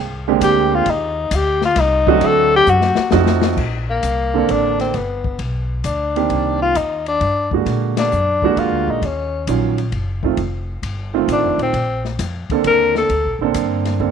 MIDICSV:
0, 0, Header, 1, 6, 480
1, 0, Start_track
1, 0, Tempo, 453172
1, 920, Time_signature, 3, 2, 24, 8
1, 14947, End_track
2, 0, Start_track
2, 0, Title_t, "Tenor saxophone"
2, 0, Program_c, 0, 66
2, 461, Note_on_c, 0, 67, 94
2, 789, Note_on_c, 0, 65, 98
2, 805, Note_off_c, 0, 67, 0
2, 957, Note_on_c, 0, 63, 82
2, 973, Note_off_c, 0, 65, 0
2, 1433, Note_on_c, 0, 67, 99
2, 1449, Note_off_c, 0, 63, 0
2, 1744, Note_off_c, 0, 67, 0
2, 1752, Note_on_c, 0, 65, 103
2, 1908, Note_on_c, 0, 63, 97
2, 1924, Note_off_c, 0, 65, 0
2, 2390, Note_on_c, 0, 69, 107
2, 2406, Note_off_c, 0, 63, 0
2, 2702, Note_off_c, 0, 69, 0
2, 2713, Note_on_c, 0, 67, 114
2, 2854, Note_on_c, 0, 66, 95
2, 2870, Note_off_c, 0, 67, 0
2, 3325, Note_off_c, 0, 66, 0
2, 4131, Note_on_c, 0, 58, 81
2, 4774, Note_on_c, 0, 62, 73
2, 4790, Note_off_c, 0, 58, 0
2, 5085, Note_off_c, 0, 62, 0
2, 5091, Note_on_c, 0, 60, 67
2, 5247, Note_on_c, 0, 59, 64
2, 5263, Note_off_c, 0, 60, 0
2, 5722, Note_off_c, 0, 59, 0
2, 6202, Note_on_c, 0, 62, 73
2, 6966, Note_off_c, 0, 62, 0
2, 7013, Note_on_c, 0, 65, 98
2, 7171, Note_on_c, 0, 63, 76
2, 7187, Note_off_c, 0, 65, 0
2, 7492, Note_off_c, 0, 63, 0
2, 7501, Note_on_c, 0, 62, 82
2, 7940, Note_off_c, 0, 62, 0
2, 8463, Note_on_c, 0, 62, 91
2, 9100, Note_on_c, 0, 65, 86
2, 9116, Note_off_c, 0, 62, 0
2, 9435, Note_on_c, 0, 63, 77
2, 9451, Note_off_c, 0, 65, 0
2, 9594, Note_on_c, 0, 61, 68
2, 9610, Note_off_c, 0, 63, 0
2, 10056, Note_off_c, 0, 61, 0
2, 11994, Note_on_c, 0, 62, 74
2, 12282, Note_off_c, 0, 62, 0
2, 12314, Note_on_c, 0, 60, 83
2, 12747, Note_off_c, 0, 60, 0
2, 13424, Note_on_c, 0, 70, 100
2, 13717, Note_off_c, 0, 70, 0
2, 13745, Note_on_c, 0, 69, 86
2, 14182, Note_off_c, 0, 69, 0
2, 14947, End_track
3, 0, Start_track
3, 0, Title_t, "Grand piano"
3, 0, Program_c, 1, 0
3, 293, Note_on_c, 1, 50, 79
3, 296, Note_on_c, 1, 56, 66
3, 300, Note_on_c, 1, 58, 73
3, 304, Note_on_c, 1, 67, 82
3, 305, Note_on_c, 1, 60, 73
3, 892, Note_off_c, 1, 50, 0
3, 893, Note_off_c, 1, 56, 0
3, 895, Note_off_c, 1, 58, 0
3, 897, Note_off_c, 1, 67, 0
3, 898, Note_off_c, 1, 60, 0
3, 2196, Note_on_c, 1, 50, 79
3, 2199, Note_on_c, 1, 57, 71
3, 2200, Note_on_c, 1, 54, 71
3, 2207, Note_on_c, 1, 66, 89
3, 2208, Note_on_c, 1, 60, 69
3, 2802, Note_off_c, 1, 50, 0
3, 2803, Note_off_c, 1, 57, 0
3, 2804, Note_off_c, 1, 54, 0
3, 2807, Note_off_c, 1, 66, 0
3, 2808, Note_off_c, 1, 60, 0
3, 3304, Note_on_c, 1, 53, 80
3, 3305, Note_on_c, 1, 60, 74
3, 3307, Note_on_c, 1, 57, 68
3, 3309, Note_on_c, 1, 63, 71
3, 3318, Note_on_c, 1, 66, 86
3, 3790, Note_off_c, 1, 53, 0
3, 3791, Note_off_c, 1, 60, 0
3, 3792, Note_off_c, 1, 57, 0
3, 3793, Note_off_c, 1, 63, 0
3, 3797, Note_off_c, 1, 66, 0
3, 4596, Note_on_c, 1, 50, 69
3, 4602, Note_on_c, 1, 58, 59
3, 4608, Note_on_c, 1, 60, 57
3, 4613, Note_on_c, 1, 69, 68
3, 5202, Note_off_c, 1, 50, 0
3, 5205, Note_off_c, 1, 58, 0
3, 5208, Note_off_c, 1, 60, 0
3, 5210, Note_off_c, 1, 69, 0
3, 6522, Note_on_c, 1, 58, 51
3, 6523, Note_on_c, 1, 51, 59
3, 6528, Note_on_c, 1, 60, 49
3, 6534, Note_on_c, 1, 67, 64
3, 7125, Note_off_c, 1, 58, 0
3, 7126, Note_off_c, 1, 51, 0
3, 7128, Note_off_c, 1, 60, 0
3, 7131, Note_off_c, 1, 67, 0
3, 7975, Note_on_c, 1, 50, 53
3, 7978, Note_on_c, 1, 56, 49
3, 7979, Note_on_c, 1, 58, 47
3, 7988, Note_on_c, 1, 66, 57
3, 8572, Note_off_c, 1, 50, 0
3, 8573, Note_off_c, 1, 56, 0
3, 8574, Note_off_c, 1, 58, 0
3, 8578, Note_off_c, 1, 66, 0
3, 8934, Note_on_c, 1, 50, 66
3, 8937, Note_on_c, 1, 56, 62
3, 8944, Note_on_c, 1, 58, 63
3, 8950, Note_on_c, 1, 66, 78
3, 9531, Note_off_c, 1, 50, 0
3, 9533, Note_off_c, 1, 56, 0
3, 9536, Note_off_c, 1, 58, 0
3, 9539, Note_off_c, 1, 66, 0
3, 10042, Note_on_c, 1, 51, 54
3, 10050, Note_on_c, 1, 61, 50
3, 10051, Note_on_c, 1, 54, 51
3, 10053, Note_on_c, 1, 65, 58
3, 10335, Note_off_c, 1, 51, 0
3, 10339, Note_off_c, 1, 54, 0
3, 10339, Note_off_c, 1, 61, 0
3, 10340, Note_off_c, 1, 65, 0
3, 10842, Note_on_c, 1, 51, 66
3, 10848, Note_on_c, 1, 57, 53
3, 10852, Note_on_c, 1, 65, 68
3, 10854, Note_on_c, 1, 60, 59
3, 10980, Note_off_c, 1, 51, 0
3, 10983, Note_off_c, 1, 57, 0
3, 10985, Note_off_c, 1, 65, 0
3, 10987, Note_off_c, 1, 60, 0
3, 11797, Note_on_c, 1, 51, 73
3, 11802, Note_on_c, 1, 57, 64
3, 11804, Note_on_c, 1, 60, 69
3, 11809, Note_on_c, 1, 65, 76
3, 12402, Note_off_c, 1, 51, 0
3, 12405, Note_off_c, 1, 57, 0
3, 12406, Note_off_c, 1, 60, 0
3, 12408, Note_off_c, 1, 65, 0
3, 13253, Note_on_c, 1, 50, 64
3, 13259, Note_on_c, 1, 58, 59
3, 13260, Note_on_c, 1, 69, 74
3, 13261, Note_on_c, 1, 60, 56
3, 13850, Note_off_c, 1, 50, 0
3, 13854, Note_off_c, 1, 58, 0
3, 13854, Note_off_c, 1, 69, 0
3, 13855, Note_off_c, 1, 60, 0
3, 14207, Note_on_c, 1, 50, 68
3, 14211, Note_on_c, 1, 58, 57
3, 14215, Note_on_c, 1, 60, 63
3, 14217, Note_on_c, 1, 69, 74
3, 14808, Note_off_c, 1, 50, 0
3, 14810, Note_off_c, 1, 58, 0
3, 14812, Note_off_c, 1, 60, 0
3, 14813, Note_off_c, 1, 69, 0
3, 14826, Note_on_c, 1, 58, 54
3, 14827, Note_on_c, 1, 50, 55
3, 14831, Note_on_c, 1, 60, 53
3, 14836, Note_on_c, 1, 69, 63
3, 14947, Note_off_c, 1, 50, 0
3, 14947, Note_off_c, 1, 58, 0
3, 14947, Note_off_c, 1, 60, 0
3, 14947, Note_off_c, 1, 69, 0
3, 14947, End_track
4, 0, Start_track
4, 0, Title_t, "Upright bass"
4, 0, Program_c, 2, 32
4, 0, Note_on_c, 2, 36, 91
4, 423, Note_off_c, 2, 36, 0
4, 431, Note_on_c, 2, 38, 96
4, 901, Note_off_c, 2, 38, 0
4, 913, Note_on_c, 2, 39, 93
4, 1381, Note_off_c, 2, 39, 0
4, 1387, Note_on_c, 2, 38, 90
4, 1858, Note_off_c, 2, 38, 0
4, 1863, Note_on_c, 2, 36, 92
4, 2333, Note_off_c, 2, 36, 0
4, 2340, Note_on_c, 2, 38, 103
4, 2814, Note_off_c, 2, 38, 0
4, 2824, Note_on_c, 2, 42, 102
4, 3135, Note_off_c, 2, 42, 0
4, 3308, Note_on_c, 2, 41, 101
4, 3774, Note_off_c, 2, 41, 0
4, 3781, Note_on_c, 2, 34, 75
4, 4254, Note_off_c, 2, 34, 0
4, 4268, Note_on_c, 2, 36, 72
4, 4737, Note_off_c, 2, 36, 0
4, 4752, Note_on_c, 2, 33, 72
4, 5220, Note_off_c, 2, 33, 0
4, 5232, Note_on_c, 2, 31, 81
4, 5700, Note_off_c, 2, 31, 0
4, 5711, Note_on_c, 2, 35, 78
4, 6179, Note_off_c, 2, 35, 0
4, 6187, Note_on_c, 2, 38, 78
4, 6658, Note_off_c, 2, 38, 0
4, 6667, Note_on_c, 2, 36, 77
4, 7138, Note_off_c, 2, 36, 0
4, 7153, Note_on_c, 2, 39, 77
4, 7621, Note_off_c, 2, 39, 0
4, 7633, Note_on_c, 2, 43, 83
4, 8101, Note_off_c, 2, 43, 0
4, 8109, Note_on_c, 2, 46, 81
4, 8579, Note_off_c, 2, 46, 0
4, 8606, Note_on_c, 2, 42, 76
4, 9062, Note_off_c, 2, 42, 0
4, 9068, Note_on_c, 2, 41, 75
4, 9234, Note_off_c, 2, 41, 0
4, 9234, Note_on_c, 2, 38, 53
4, 9392, Note_off_c, 2, 38, 0
4, 9399, Note_on_c, 2, 34, 62
4, 9547, Note_off_c, 2, 34, 0
4, 9551, Note_on_c, 2, 39, 80
4, 10020, Note_off_c, 2, 39, 0
4, 10032, Note_on_c, 2, 34, 79
4, 10500, Note_off_c, 2, 34, 0
4, 10506, Note_on_c, 2, 30, 82
4, 10977, Note_off_c, 2, 30, 0
4, 10986, Note_on_c, 2, 29, 76
4, 11457, Note_off_c, 2, 29, 0
4, 11468, Note_on_c, 2, 31, 81
4, 11938, Note_off_c, 2, 31, 0
4, 11946, Note_on_c, 2, 33, 78
4, 12110, Note_off_c, 2, 33, 0
4, 12110, Note_on_c, 2, 29, 52
4, 12257, Note_off_c, 2, 29, 0
4, 12263, Note_on_c, 2, 27, 62
4, 12418, Note_off_c, 2, 27, 0
4, 12426, Note_on_c, 2, 34, 81
4, 12897, Note_off_c, 2, 34, 0
4, 12909, Note_on_c, 2, 41, 83
4, 13218, Note_off_c, 2, 41, 0
4, 13391, Note_on_c, 2, 39, 83
4, 13860, Note_off_c, 2, 39, 0
4, 13868, Note_on_c, 2, 38, 76
4, 14033, Note_on_c, 2, 34, 48
4, 14049, Note_off_c, 2, 38, 0
4, 14175, Note_off_c, 2, 34, 0
4, 14182, Note_on_c, 2, 33, 59
4, 14338, Note_off_c, 2, 33, 0
4, 14346, Note_on_c, 2, 43, 81
4, 14817, Note_off_c, 2, 43, 0
4, 14826, Note_on_c, 2, 41, 80
4, 14947, Note_off_c, 2, 41, 0
4, 14947, End_track
5, 0, Start_track
5, 0, Title_t, "Muted upright bass strokes"
5, 3153, Note_on_c, 9, 29, 43
5, 3259, Note_off_c, 9, 29, 0
5, 13237, Note_on_c, 9, 29, 35
5, 13342, Note_off_c, 9, 29, 0
5, 14947, End_track
6, 0, Start_track
6, 0, Title_t, "Drums"
6, 435, Note_on_c, 9, 36, 21
6, 437, Note_on_c, 9, 44, 54
6, 437, Note_on_c, 9, 51, 77
6, 541, Note_off_c, 9, 36, 0
6, 543, Note_off_c, 9, 44, 0
6, 543, Note_off_c, 9, 51, 0
6, 908, Note_on_c, 9, 51, 58
6, 911, Note_on_c, 9, 36, 21
6, 1014, Note_off_c, 9, 51, 0
6, 1017, Note_off_c, 9, 36, 0
6, 1386, Note_on_c, 9, 36, 22
6, 1388, Note_on_c, 9, 44, 58
6, 1388, Note_on_c, 9, 51, 86
6, 1492, Note_off_c, 9, 36, 0
6, 1494, Note_off_c, 9, 44, 0
6, 1494, Note_off_c, 9, 51, 0
6, 1711, Note_on_c, 9, 38, 49
6, 1816, Note_off_c, 9, 38, 0
6, 1860, Note_on_c, 9, 38, 40
6, 1861, Note_on_c, 9, 51, 72
6, 1864, Note_on_c, 9, 36, 27
6, 1966, Note_off_c, 9, 38, 0
6, 1967, Note_off_c, 9, 51, 0
6, 1970, Note_off_c, 9, 36, 0
6, 2192, Note_on_c, 9, 36, 61
6, 2298, Note_off_c, 9, 36, 0
6, 2341, Note_on_c, 9, 36, 26
6, 2341, Note_on_c, 9, 51, 63
6, 2447, Note_off_c, 9, 36, 0
6, 2447, Note_off_c, 9, 51, 0
6, 2822, Note_on_c, 9, 44, 66
6, 2928, Note_off_c, 9, 44, 0
6, 2979, Note_on_c, 9, 38, 60
6, 3085, Note_off_c, 9, 38, 0
6, 3129, Note_on_c, 9, 38, 75
6, 3235, Note_off_c, 9, 38, 0
6, 3291, Note_on_c, 9, 38, 77
6, 3397, Note_off_c, 9, 38, 0
6, 3457, Note_on_c, 9, 38, 84
6, 3563, Note_off_c, 9, 38, 0
6, 3617, Note_on_c, 9, 38, 99
6, 3723, Note_off_c, 9, 38, 0
6, 3780, Note_on_c, 9, 36, 56
6, 3785, Note_on_c, 9, 49, 53
6, 3886, Note_off_c, 9, 36, 0
6, 3891, Note_off_c, 9, 49, 0
6, 4263, Note_on_c, 9, 36, 19
6, 4265, Note_on_c, 9, 44, 49
6, 4265, Note_on_c, 9, 51, 60
6, 4369, Note_off_c, 9, 36, 0
6, 4371, Note_off_c, 9, 44, 0
6, 4371, Note_off_c, 9, 51, 0
6, 4746, Note_on_c, 9, 36, 18
6, 4752, Note_on_c, 9, 51, 54
6, 4852, Note_off_c, 9, 36, 0
6, 4858, Note_off_c, 9, 51, 0
6, 5078, Note_on_c, 9, 38, 33
6, 5079, Note_on_c, 9, 51, 37
6, 5184, Note_off_c, 9, 38, 0
6, 5185, Note_off_c, 9, 51, 0
6, 5226, Note_on_c, 9, 36, 20
6, 5229, Note_on_c, 9, 38, 28
6, 5230, Note_on_c, 9, 51, 45
6, 5332, Note_off_c, 9, 36, 0
6, 5335, Note_off_c, 9, 38, 0
6, 5336, Note_off_c, 9, 51, 0
6, 5554, Note_on_c, 9, 36, 48
6, 5660, Note_off_c, 9, 36, 0
6, 5704, Note_on_c, 9, 36, 19
6, 5708, Note_on_c, 9, 51, 50
6, 5810, Note_off_c, 9, 36, 0
6, 5813, Note_off_c, 9, 51, 0
6, 6185, Note_on_c, 9, 36, 22
6, 6185, Note_on_c, 9, 44, 53
6, 6185, Note_on_c, 9, 51, 55
6, 6291, Note_off_c, 9, 36, 0
6, 6291, Note_off_c, 9, 44, 0
6, 6291, Note_off_c, 9, 51, 0
6, 6525, Note_on_c, 9, 51, 40
6, 6631, Note_off_c, 9, 51, 0
6, 6668, Note_on_c, 9, 36, 16
6, 6671, Note_on_c, 9, 51, 47
6, 6774, Note_off_c, 9, 36, 0
6, 6777, Note_off_c, 9, 51, 0
6, 7148, Note_on_c, 9, 36, 22
6, 7152, Note_on_c, 9, 44, 55
6, 7152, Note_on_c, 9, 51, 55
6, 7254, Note_off_c, 9, 36, 0
6, 7258, Note_off_c, 9, 44, 0
6, 7258, Note_off_c, 9, 51, 0
6, 7481, Note_on_c, 9, 51, 38
6, 7587, Note_off_c, 9, 51, 0
6, 7630, Note_on_c, 9, 36, 21
6, 7635, Note_on_c, 9, 51, 47
6, 7736, Note_off_c, 9, 36, 0
6, 7741, Note_off_c, 9, 51, 0
6, 7958, Note_on_c, 9, 36, 46
6, 8064, Note_off_c, 9, 36, 0
6, 8111, Note_on_c, 9, 36, 14
6, 8116, Note_on_c, 9, 38, 32
6, 8117, Note_on_c, 9, 51, 44
6, 8217, Note_off_c, 9, 36, 0
6, 8222, Note_off_c, 9, 38, 0
6, 8223, Note_off_c, 9, 51, 0
6, 8442, Note_on_c, 9, 38, 71
6, 8443, Note_on_c, 9, 51, 61
6, 8548, Note_off_c, 9, 38, 0
6, 8549, Note_off_c, 9, 51, 0
6, 8593, Note_on_c, 9, 44, 49
6, 8699, Note_off_c, 9, 44, 0
6, 8920, Note_on_c, 9, 36, 45
6, 9026, Note_off_c, 9, 36, 0
6, 9072, Note_on_c, 9, 36, 22
6, 9078, Note_on_c, 9, 51, 48
6, 9178, Note_off_c, 9, 36, 0
6, 9184, Note_off_c, 9, 51, 0
6, 9551, Note_on_c, 9, 36, 16
6, 9559, Note_on_c, 9, 51, 51
6, 9657, Note_off_c, 9, 36, 0
6, 9665, Note_off_c, 9, 51, 0
6, 10029, Note_on_c, 9, 36, 18
6, 10033, Note_on_c, 9, 44, 47
6, 10033, Note_on_c, 9, 51, 61
6, 10135, Note_off_c, 9, 36, 0
6, 10139, Note_off_c, 9, 44, 0
6, 10139, Note_off_c, 9, 51, 0
6, 10359, Note_on_c, 9, 51, 38
6, 10465, Note_off_c, 9, 51, 0
6, 10506, Note_on_c, 9, 36, 19
6, 10509, Note_on_c, 9, 51, 49
6, 10612, Note_off_c, 9, 36, 0
6, 10615, Note_off_c, 9, 51, 0
6, 10835, Note_on_c, 9, 36, 44
6, 10940, Note_off_c, 9, 36, 0
6, 10985, Note_on_c, 9, 36, 18
6, 10986, Note_on_c, 9, 51, 45
6, 11091, Note_off_c, 9, 36, 0
6, 11092, Note_off_c, 9, 51, 0
6, 11464, Note_on_c, 9, 36, 24
6, 11471, Note_on_c, 9, 51, 59
6, 11570, Note_off_c, 9, 36, 0
6, 11577, Note_off_c, 9, 51, 0
6, 11945, Note_on_c, 9, 36, 23
6, 11953, Note_on_c, 9, 44, 46
6, 11953, Note_on_c, 9, 51, 59
6, 12051, Note_off_c, 9, 36, 0
6, 12059, Note_off_c, 9, 44, 0
6, 12059, Note_off_c, 9, 51, 0
6, 12278, Note_on_c, 9, 51, 39
6, 12384, Note_off_c, 9, 51, 0
6, 12426, Note_on_c, 9, 36, 21
6, 12432, Note_on_c, 9, 51, 46
6, 12532, Note_off_c, 9, 36, 0
6, 12538, Note_off_c, 9, 51, 0
6, 12761, Note_on_c, 9, 38, 35
6, 12867, Note_off_c, 9, 38, 0
6, 12907, Note_on_c, 9, 36, 21
6, 12910, Note_on_c, 9, 38, 34
6, 12911, Note_on_c, 9, 44, 52
6, 12911, Note_on_c, 9, 51, 63
6, 13013, Note_off_c, 9, 36, 0
6, 13016, Note_off_c, 9, 38, 0
6, 13017, Note_off_c, 9, 44, 0
6, 13017, Note_off_c, 9, 51, 0
6, 13236, Note_on_c, 9, 36, 43
6, 13238, Note_on_c, 9, 51, 36
6, 13342, Note_off_c, 9, 36, 0
6, 13344, Note_off_c, 9, 51, 0
6, 13388, Note_on_c, 9, 36, 17
6, 13390, Note_on_c, 9, 51, 56
6, 13494, Note_off_c, 9, 36, 0
6, 13496, Note_off_c, 9, 51, 0
6, 13717, Note_on_c, 9, 38, 46
6, 13823, Note_off_c, 9, 38, 0
6, 13868, Note_on_c, 9, 36, 18
6, 13871, Note_on_c, 9, 51, 49
6, 13974, Note_off_c, 9, 36, 0
6, 13976, Note_off_c, 9, 51, 0
6, 14345, Note_on_c, 9, 44, 55
6, 14345, Note_on_c, 9, 51, 63
6, 14346, Note_on_c, 9, 36, 20
6, 14451, Note_off_c, 9, 44, 0
6, 14451, Note_off_c, 9, 51, 0
6, 14452, Note_off_c, 9, 36, 0
6, 14673, Note_on_c, 9, 38, 38
6, 14674, Note_on_c, 9, 51, 40
6, 14779, Note_off_c, 9, 38, 0
6, 14780, Note_off_c, 9, 51, 0
6, 14947, End_track
0, 0, End_of_file